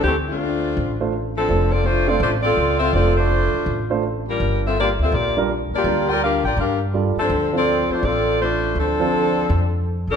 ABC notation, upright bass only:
X:1
M:4/4
L:1/8
Q:"Swing" 1/4=165
K:Dm
V:1 name="Upright bass" clef=bass
D,,4 A,,,4 | F,,,4 A,,,2 ^C,,2 | F,,,3 z A,,,4 | G,,,3 D,, B,,,3 z |
D,,3 A,,, G,,3 z | D,,3 z A,,,4 | D,,4 F,,3 A,,, |]